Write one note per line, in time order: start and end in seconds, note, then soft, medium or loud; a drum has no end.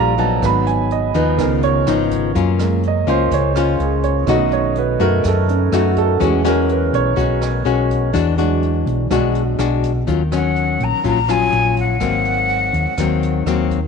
0.00 0.38 A#1 medium
0.00 0.39 A#2 medium
0.00 0.43 F3 soft
0.00 0.14 G3 medium
0.00 0.43 G3 soft
0.00 0.14 D4 medium
0.00 0.43 D4 soft
0.00 0.14 F4 medium
0.00 0.43 A4 medium
0.00 0.43 A#4 medium
0.00 0.43 C5 medium
0.00 0.43 D5 medium
0.00 0.43 F5 medium
0.00 0.18 A#5 medium
0.18 1.10 F#3 medium
0.18 1.10 B3 medium
0.18 1.11 D#4 medium
0.18 0.42 A5 medium
0.18 kick soft
0.18 closed hi-hat soft
0.42 1.10 G#1 loud
0.42 1.36 G#2 medium
0.42 1.34 F#3 soft
0.42 1.35 B3 soft
0.42 0.67 B5 medium
0.42 kick medium
0.42 cross-stick medium
0.42 closed hi-hat medium
0.67 0.90 G#5 medium
0.67 closed hi-hat soft
0.91 1.14 D#5 medium
0.91 closed hi-hat soft
1.14 1.37 D#2 medium
1.14 1.83 F3 medium
1.14 1.83 B3 medium
1.14 1.83 D#4 medium
1.14 1.38 B4 medium
1.14 kick soft
1.14 closed hi-hat soft
1.38 1.83 C#2 medium
1.38 2.33 C#3 medium
1.38 2.30 D#3 soft
1.38 2.31 F3 soft
1.38 2.31 B3 soft
1.38 1.62 A#4 medium
1.38 kick medium
1.38 cross-stick medium
1.38 closed hi-hat medium
1.63 1.78 C#5 medium
1.63 closed hi-hat soft
1.87 2.31 G#1 medium
1.87 2.31 F3 medium
1.87 2.31 B3 medium
1.87 2.31 D#4 medium
1.87 cross-stick medium
1.87 closed hi-hat soft
2.11 kick soft
2.11 closed hi-hat soft
2.35 3.03 F#2 loud
2.35 3.29 F#3 medium
2.35 2.83 A#3 medium
2.35 2.83 C#4 medium
2.35 2.83 F4 medium
2.35 kick medium
2.35 closed hi-hat medium
2.59 2.91 G#3 soft
2.59 2.92 A#3 soft
2.59 cross-stick medium
2.59 closed hi-hat soft
2.83 closed hi-hat soft
2.88 3.09 D#5 medium
3.07 3.30 C#2 medium
3.07 3.51 A#3 medium
3.07 3.52 C#4 medium
3.07 3.52 F4 medium
3.07 3.32 C5 medium
3.07 kick soft
3.07 closed hi-hat soft
3.31 3.76 C#2 medium
3.31 4.25 C#3 medium
3.31 3.56 C#5 medium
3.31 kick medium
3.31 closed hi-hat medium
3.56 4.24 A#3 medium
3.56 4.24 C#4 medium
3.56 3.79 F4 medium
3.56 4.25 F4 medium
3.56 cross-stick medium
3.56 closed hi-hat soft
3.79 4.24 C#2 medium
3.79 4.04 G#4 medium
3.79 closed hi-hat soft
4.03 4.27 C#5 medium
4.03 kick soft
4.03 closed hi-hat soft
4.27 4.96 B1 loud
4.27 5.22 B2 medium
4.27 4.59 D#3 soft
4.27 4.59 A3 soft
4.27 4.76 A3 medium
4.27 4.60 C#4 soft
4.27 4.76 D#4 medium
4.27 4.76 F#4 medium
4.27 4.52 D#5 medium
4.27 kick medium
4.27 cross-stick medium
4.27 closed hi-hat medium
4.51 4.76 C#5 medium
4.51 closed hi-hat soft
4.75 5.00 B4 medium
4.75 closed hi-hat soft
5.00 5.22 F#2 medium
5.00 5.69 A3 medium
5.00 5.69 D#4 medium
5.00 5.69 F#4 medium
5.00 5.24 A#4 medium
5.00 kick soft
5.00 closed hi-hat soft
5.24 6.18 F#2 medium
5.24 5.69 F#2 loud
5.24 5.49 A4 medium
5.24 kick medium
5.24 cross-stick medium
5.24 closed hi-hat medium
5.49 5.72 C#4 medium
5.49 closed hi-hat soft
5.72 6.17 F#2 medium
5.72 6.17 A3 medium
5.72 6.17 D#4 medium
5.72 6.17 F#4 medium
5.72 5.97 F#4 medium
5.72 cross-stick medium
5.72 closed hi-hat soft
5.96 6.21 A4 medium
5.96 kick soft
5.96 closed hi-hat soft
6.20 6.89 E2 loud
6.20 7.15 E3 medium
6.20 6.90 F#3 soft
6.20 6.41 G#3 medium
6.20 6.90 G#3 soft
6.20 6.41 C#4 medium
6.20 6.90 C#4 soft
6.20 6.41 F#4 medium
6.20 6.46 G#4 medium
6.20 kick medium
6.20 closed hi-hat medium
6.45 7.13 G#3 medium
6.45 7.13 C#4 medium
6.45 7.14 F#4 medium
6.45 6.70 A#4 medium
6.45 cross-stick medium
6.45 closed hi-hat soft
6.69 6.94 B4 medium
6.69 closed hi-hat soft
6.93 7.16 B1 medium
6.93 8.11 C#5 medium
6.93 kick soft
6.93 closed hi-hat soft
7.16 7.62 B1 medium
7.16 8.11 B2 medium
7.16 7.61 G#3 medium
7.16 7.62 C#4 medium
7.16 7.62 F#4 medium
7.16 kick medium
7.16 closed hi-hat medium
7.42 cross-stick medium
7.42 closed hi-hat soft
7.65 8.11 B1 medium
7.65 8.12 G#3 medium
7.65 8.12 C#4 medium
7.65 8.12 F#4 medium
7.65 closed hi-hat soft
7.90 kick soft
7.90 closed hi-hat soft
8.13 8.82 E2 loud
8.13 9.08 E3 medium
8.13 8.34 G#3 medium
8.13 8.34 D4 medium
8.13 8.35 F#4 medium
8.13 kick medium
8.13 cross-stick medium
8.13 closed hi-hat medium
8.37 8.70 F#3 soft
8.37 9.07 G#3 medium
8.37 8.70 G#3 soft
8.37 8.70 D4 medium
8.37 9.07 D4 medium
8.37 9.07 F#4 medium
8.37 closed hi-hat soft
8.63 closed hi-hat soft
8.86 9.09 B1 medium
8.86 kick soft
8.86 closed hi-hat soft
9.10 9.56 B1 medium
9.10 10.05 B2 medium
9.10 9.32 F#3 soft
9.10 9.33 G#3 soft
9.10 9.42 G#3 medium
9.10 9.33 D4 soft
9.10 9.42 D4 medium
9.10 9.43 F#4 medium
9.10 kick medium
9.10 cross-stick medium
9.10 closed hi-hat medium
9.35 closed hi-hat soft
9.58 10.04 B1 loud
9.58 9.91 G#3 medium
9.58 9.92 D4 medium
9.58 9.92 F#4 medium
9.58 cross-stick medium
9.58 closed hi-hat soft
9.83 kick soft
9.83 closed hi-hat soft
10.07 10.76 D#2 medium
10.07 11.02 D#3 medium
10.07 10.22 F#3 soft
10.07 10.22 C#4 medium
10.07 10.22 F4 medium
10.07 kick medium
10.07 closed hi-hat medium
10.32 11.01 F#3 medium
10.32 11.01 C#4 medium
10.32 10.85 F#5 loud
10.32 cross-stick medium
10.32 closed hi-hat soft
10.56 closed hi-hat soft
10.80 10.91 A#1 medium
10.80 11.06 A#5 loud
10.80 kick soft
10.80 closed hi-hat soft
11.04 11.49 A#1 medium
11.04 11.99 A#2 medium
11.04 11.18 F#3 medium
11.04 11.19 C#4 medium
11.04 11.19 F4 medium
11.04 11.32 A#5 loud
11.04 kick medium
11.04 closed hi-hat medium
11.28 11.97 F#3 medium
11.28 11.97 C#4 medium
11.28 11.97 F4 medium
11.28 11.78 G#5 loud
11.28 cross-stick medium
11.28 closed hi-hat soft
11.52 11.98 A#1 medium
11.52 closed hi-hat soft
11.77 13.67 F#5 medium
11.77 kick soft
11.77 closed hi-hat soft
12.00 12.69 G#1 medium
12.00 12.95 G#2 medium
12.00 12.94 F#3 medium
12.00 12.94 A#3 medium
12.00 12.94 C4 medium
12.00 kick medium
12.00 cross-stick medium
12.00 closed hi-hat medium
12.25 closed hi-hat soft
12.49 closed hi-hat soft
12.73 12.85 D#2 medium
12.73 kick soft
12.73 closed hi-hat soft
12.98 13.43 D#2 medium
12.98 13.88 D#3 medium
12.98 13.43 F#3 medium
12.98 13.43 A#3 medium
12.98 13.43 C4 medium
12.98 kick medium
12.98 cross-stick medium
12.98 closed hi-hat medium
13.23 closed hi-hat soft
13.45 13.88 D#2 medium
13.45 13.79 F#3 medium
13.45 13.79 A#3 medium
13.45 13.79 C4 medium
13.45 cross-stick medium
13.45 closed hi-hat soft
13.71 kick soft
13.71 closed hi-hat soft